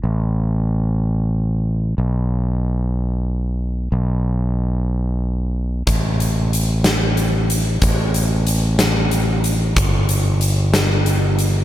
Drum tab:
HH |------|------|------|xxxxxx|
SD |------|------|------|---o--|
BD |------|------|------|o-----|

HH |xxxxxx|xxxxxx|
SD |---o--|---o--|
BD |o-----|o-----|